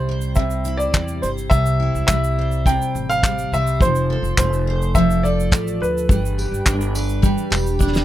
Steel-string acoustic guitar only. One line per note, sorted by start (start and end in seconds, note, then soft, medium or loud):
0.00 0.35 C3 medium
0.00 0.92 G3 medium
0.00 0.64 E4 medium
0.09 1.22 C5 medium
0.37 1.49 C3 medium
0.65 1.78 E4 medium
0.94 2.08 G3 medium
1.23 2.38 C5 medium
1.50 2.65 C3 medium
1.80 2.94 E4 medium
2.09 3.23 G3 medium
2.38 3.53 C5 medium
2.66 3.86 C3 medium
3.25 3.87 G3 medium
3.54 4.67 C5 medium
3.83 4.94 F3 medium
4.10 5.23 A4 medium
4.39 5.50 A3 medium
4.67 5.81 C5 medium
4.95 6.15 F3 medium
5.24 6.15 A4 medium
5.51 6.09 A3 medium
6.09 7.22 G3 medium
6.38 7.50 G4 medium
6.65 7.78 D4 medium
6.95 8.05 B4 medium
7.22 8.05 G3 medium
7.50 8.05 G4 medium
7.79 8.05 D4 medium